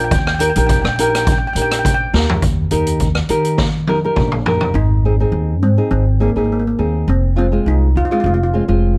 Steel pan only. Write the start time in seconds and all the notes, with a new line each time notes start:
0.04 G5
0.11 G5
0.19 G5
0.27 G5
0.34 G5
0.39 G5
0.50 G5
0.58 G5
0.67 G5
0.71 G5
0.82 G5
0.89 G5
0.96 G5
1.02 G5
1.10 G5
1.17 G5
1.25 G5
1.32 G5
1.38 G5
1.47 G5
1.53 G5
1.62 G5
1.72 G5
1.79 G5
1.86 G5
1.94 G5
4.75 D#4
5.63 C4
5.91 C4
6.22 A#3
6.28 A#3
6.38 A#3
6.44 A#3
6.52 A#3
6.60 A#3
6.67 A#3
7.09 C4
7.38 C4
7.68 D#4
7.97 F4
8.05 F4
8.12 F4
8.20 F4
8.26 F4
8.34 F4
8.43 F4